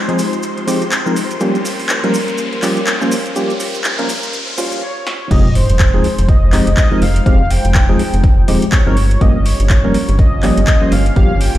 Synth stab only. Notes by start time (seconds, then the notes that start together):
0.08 F3 G#3 C4 D#4 G#4
0.67 F3 G#3 C4 D#4 G4
1.06 F3 G#3 C4 D#4 A#4
1.40 F3 G3 A#3 C#4 G4
2.03 F3 G3 A#3 C#4 A#4
2.63 F3 G3 A#3 C#4 G4
3.01 F3 G3 A#3 C#4 C5
3.36 F3 G3 A#3 C#4 G4
3.99 F3 G3 A#3 C#4 A#4
4.57 F3 G3 A#3 C#4 F4
5.31 F3 G#3 C4 D#4 G4
5.94 F3 G#3 C4 D#4 G#4
6.53 F3 G#3 C4 D#4 G4
6.91 F3 G#3 C4 D#4 A#4
7.26 F3 G#3 C4 D#4 G4
7.89 F3 G#3 C4 D#4 G#4
8.48 F3 G#3 C4 D#4 G4
8.86 F3 G#3 C4 D#4 A#4
9.21 F3 G3 A#3 C#4 G4
9.84 F3 G3 A#3 C#4 A#4
10.43 F3 G3 A#3 C#4 G4
10.81 F3 G3 A#3 C#4 C5
11.16 F3 G3 A#3 C#4 G4